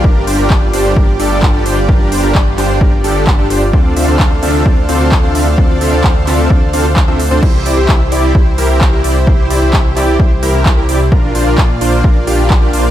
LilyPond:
<<
  \new Staff \with { instrumentName = "Supersaw synth" } { \time 4/4 \key d \minor \tempo 4 = 130 <d' g' bes'>8 <d' g' c''>16 <d' g' bes'>16 <d' g' d''>16 r16 <d' g' c''>8 d'16 r16 <d' g' a'>8. <d' g' a'>16 <d' g' c''>16 r16 | <d' g' bes'>8 <d' g' c''>16 <d' g' bes'>16 <d' g' d''>16 r16 <d' g' c''>8 <d' g' bes'>16 r16 <d' g' a'>8. <d' g' a'>16 <d' g' c''>16 r16 | <c' d' f' a' d''>8 <c' d' f' a' e''>16 <c' d' f' a' d''>16 <c' d' f' f''>16 r16 <c' d' f' a' e''>8 <c' d' f' a' d''>16 r16 <c' d' f' a' c''>8. <c' d' f' a' c''>16 <c' d' f' a' e''>16 r16 | <c' d' f' a' d''>8 <c' d' f' a' e''>16 <c' d' f' a' d''>16 <c' d' f' f''>16 r16 <c' d' f' a' e''>8 <c' d' f' a' d''>16 r16 <c' d' f' a' f''>16 r8 <c' d' f' a' e''>16 r16 <c' d' f' a' c''>16 |
<e' g' c''>8 <e' g' d''>16 <e' g' c''>16 <e' g' e''>16 r16 <e' g' d''>8 <e' g' c''>16 r16 <e' g' bes'>8. <e' g' bes'>16 <e' g' d''>16 r16 | <e' g' c''>8 <e' g' d''>16 <e' g' c''>16 g'16 r16 <e' g' d''>8 <e' c''>16 r16 <e' g' bes'>8. <e' g' bes'>16 <e' g' d''>16 r16 | <d' f' bes'>8 <d' f' c''>16 <d' f' bes'>16 <d' f' d''>16 r16 <d' f' c''>8 <d' f'>16 r16 <d' f' g'>8. <d' f' g'>16 <d' f' c''>16 r16 | }
  \new Staff \with { instrumentName = "Supersaw synth" } { \time 4/4 \key d \minor <g f' g' d''>1~ | <g f' g' d''>1 | <d' a' c'' f''>1~ | <d' a' c'' f''>1 |
<e' g'>1~ | <e' g'>1 | <bes f' d'' f''>1 | }
  \new Staff \with { instrumentName = "Detuned saw bass" } { \clef bass \time 4/4 \key d \minor g,,8 g,,16 g,,16 g,,8 g,,8 g,,8 g,,8. g,,16 g,,8 | g,,8 g,,16 g,,16 g,,8 g,,8 g,,8 g,,8. g,,16 g,,8 | d,8 d,16 d,16 d,8 d,8 d,8 d,8. d,16 d,8 | d,8 d,16 d,16 d,8 d,8 d,8 d,8. d,8 d,16 |
c,8 c,16 c,16 c,8 c,8 c,8 c,8. c,16 c,8 | c,8 c,16 c,16 c,8 c,8 c,8 c,8. c,16 c,8 | bes,,8 bes,,16 bes,,16 bes,,8 bes,,8 bes,,8 bes,,8. bes,,16 bes,,8 | }
  \new DrumStaff \with { instrumentName = "Drums" } \drummode { \time 4/4 bd8 hho8 <hc bd>8 hho8 bd8 hho8 <hc bd>8 hho8 | bd8 hho8 <hc bd>8 <hc hho>8 bd8 hho8 <hc bd>8 hho8 | bd8 hho8 <hc bd>8 hho8 bd8 hho8 <hc bd>8 hho8 | bd8 hho8 <hc bd>8 <hc hho>8 bd8 hho8 <hc bd>8 hho8 |
<cymc bd>8 hho8 <hc bd>8 hho8 bd8 hho8 <hc bd>8 hho8 | bd8 hho8 <hc bd>8 <hc hho>8 bd8 hho8 <hc bd>8 hho8 | bd8 hho8 <hc bd>8 hho8 bd8 hho8 <hc bd>8 hho8 | }
>>